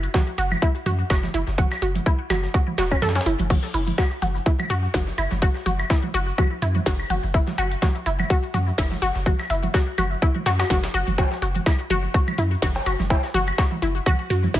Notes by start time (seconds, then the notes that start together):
0.04 closed hi-hat, shaker
0.14 F#4, kick, snare, closed hi-hat, high conga, shaker
0.27 closed hi-hat
0.38 F#1 F#4, closed hi-hat, shaker
0.52 high conga, claves, shaker
0.62 E4, kick, closed hi-hat, shaker
0.76 closed hi-hat
0.86 F#2 F#4, closed hi-hat, high conga, shaker
0.99 shaker
1.10 F#1 F#4, kick, snare, closed hi-hat, claves, shaker
1.23 snare, high conga
1.34 F#1 E4, closed hi-hat, shaker
1.47 F#1, snare, shaker
1.58 F#4, kick, closed hi-hat, high conga, shaker
1.71 snare, closed hi-hat, claves
1.82 F#1 F#4, closed hi-hat, shaker
1.95 closed hi-hat, high conga, shaker
2.06 E4, kick, closed hi-hat, shaker
2.30 F#1 F#4, snare, closed hi-hat, high conga, claves, shaker
2.43 snare, shaker
2.54 F#4, kick, closed hi-hat, shaker
2.68 high conga
2.78 E1 F#4, snare, closed hi-hat, shaker
2.91 C#4, kick, closed hi-hat, claves, shaker
3.01 F#2 A4, snare, closed hi-hat, high conga, shaker
3.09 snare, closed hi-hat
3.15 C#4, snare, closed hi-hat
3.21 snare, closed hi-hat
3.26 F#1 E4, closed hi-hat, shaker
3.39 F#1, closed hi-hat, high conga, shaker
3.50 F#4, kick, closed hi-hat, crash, high conga, shaker
3.63 snare
3.74 F#1 E4, closed hi-hat, shaker
3.87 closed hi-hat, high conga, shaker
3.98 F#4, kick, snare, closed hi-hat, claves, shaker
4.12 closed hi-hat
4.22 F#1 F#4, closed hi-hat, high conga, shaker
4.35 shaker
4.46 E4, kick, closed hi-hat, shaker
4.59 closed hi-hat, high conga, claves
4.70 F#2 F#4, closed hi-hat, shaker
4.83 shaker
4.94 F#1 F#4, kick, snare, closed hi-hat, high conga, shaker
5.07 snare
5.18 F#1 E4, closed hi-hat, claves, shaker
5.31 F#1, snare, high conga, shaker
5.42 F#4, kick, closed hi-hat, shaker
5.55 snare
5.66 F#1 F#4, closed hi-hat, high conga, shaker
5.80 closed hi-hat, claves, shaker
5.90 E4, kick, snare, closed hi-hat, shaker
6.04 high conga
6.14 F#1 F#4, closed hi-hat, shaker
6.28 shaker
6.38 F#4, kick, closed hi-hat, high conga, claves, shaker
6.62 F#2 E4, closed hi-hat, shaker
6.75 high conga, shaker
6.86 F#1 F#4, kick, snare, open hi-hat, shaker
7.00 claves
7.10 F#1 F#4, closed hi-hat, high conga, shaker
7.23 F#1, closed hi-hat, shaker
7.34 E4, kick, closed hi-hat, shaker
7.47 snare, high conga
7.58 F#1 F#4, closed hi-hat, claves, shaker
7.72 closed hi-hat, shaker
7.82 F#4, kick, snare, closed hi-hat, high conga, shaker
7.96 closed hi-hat
8.06 F#1 E4, closed hi-hat, shaker
8.19 high conga, claves, shaker
8.30 F#4, kick, closed hi-hat, shaker
8.43 closed hi-hat
8.54 F#2 F#4, closed hi-hat, high conga, shaker
8.68 shaker
8.78 F#1 E4, kick, snare, closed hi-hat, claves, shaker
8.92 snare, high conga
9.02 F#1 F#4, closed hi-hat, shaker
9.15 F#1, snare, shaker
9.26 F#4, kick, closed hi-hat, high conga, shaker
9.39 snare, closed hi-hat, claves
9.50 F#1 E4, closed hi-hat, shaker
9.63 closed hi-hat, high conga, shaker
9.74 F#4, kick, snare, closed hi-hat, shaker
9.98 F#1 F#4, closed hi-hat, high conga, claves, shaker
10.12 shaker
10.21 E4, kick, closed hi-hat, shaker
10.36 high conga
10.46 F#2 F#4, snare, closed hi-hat, shaker
10.59 F#4, snare, closed hi-hat, claves, shaker
10.70 F#1 F#4, kick, snare, closed hi-hat, high conga, shaker
10.84 snare, closed hi-hat
10.94 F#1 F#4, closed hi-hat, shaker
11.07 F#1, closed hi-hat, high conga, shaker
11.18 F#4, kick, closed hi-hat, cowbell, high conga, shaker
11.32 snare
11.42 F#1 F#4, closed hi-hat, shaker
11.55 closed hi-hat, high conga, shaker
11.66 E4, kick, snare, closed hi-hat, claves, shaker
11.80 closed hi-hat
11.90 F#1 F#4, closed hi-hat, high conga, shaker
12.04 shaker
12.14 F#4, kick, closed hi-hat, shaker
12.28 closed hi-hat, high conga, claves
12.38 F#2 E4, closed hi-hat, shaker
12.52 shaker
12.62 F#1 F#4, kick, snare, closed hi-hat, high conga, shaker
12.76 snare, cowbell
12.86 F#1 F#4, closed hi-hat, claves, shaker
12.99 F#1, snare, high conga, shaker
13.10 E4, kick, closed hi-hat, cowbell, shaker
13.24 snare
13.34 F#1 F#4, closed hi-hat, high conga, shaker
13.48 closed hi-hat, claves, shaker
13.58 F#4, kick, snare, closed hi-hat, shaker
13.72 high conga
13.82 F#1 E4, closed hi-hat, shaker
13.96 shaker
14.06 F#4, kick, closed hi-hat, high conga, claves, shaker
14.30 F#2 F#4, closed hi-hat, shaker
14.43 high conga, shaker
14.54 F#1 E4, kick, snare, open hi-hat, shaker